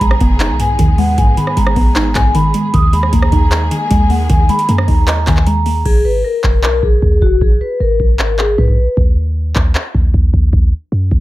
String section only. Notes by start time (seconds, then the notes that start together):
Already playing: D#3 G#3 B3 G#4
2.74 D#3 G#3 A#3 G#4